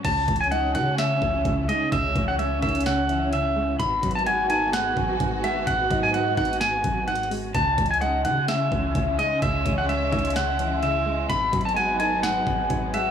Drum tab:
CC |x-----------------------------------------------------------------------------------------------|------------------------------------------------------------------------------------------------|------------------------------------------------------------------------------------------------|------------------------------------------------------------------------------------------------|
HH |x-----------x---x---x---x-----------x-----------x-----------------------x-----------x-----------|x-----------x-----------x-----------x--x--x--x--x-----------x-----------x-----------------------|x-----------x---x---x---x-----------x-----------x-----------------------x-----------x-----------|x-----------x-----------x-----------x---x---x---x-----------x-----------x---x---x---o-----------|
SD |------------------------------------------------o-----------------------------------------------|------------------------------------------------o-----------------------------------------------|------------------------------------------------o-----------------------------------------------|------------------------------------------------o-----------------------------------------------|
BD |o-----------o-----------------------------------------------o-----------o-----------------------|o-----------o-----------------------o-----------------------------------------------------------|o-----------o-----------------------------------------------o-----------o-----------------------|o-----------o-----------------------o-----------------------o-----------------------------------|

CC |------------------------------------------------------------------------------------------------|------------------------------------------------------------------------------------------------|------------------------------------------------------------------------------------------------|
HH |x-----------x---x---x---x-----------x-----------x-----------------------x-----------x-----------|x-----------x-----------x-----------x--x--x--x--x-----------x-----------x-----------------------|x-----------x---x---x---x-----------x-----------x-----------------------x-----------x-----------|
SD |------------------------------------------------o-----------------------------------------------|------------------------------------------------o-----------------------------------------------|------------------------------------------------o-----------------------------------------------|
BD |o-----------o-----------------------------------------------o-----------o-----------------------|o-----------o-----------------------o-----------------------------------------------------------|o-----------o-----------------------------------------------o-----------o-----------------------|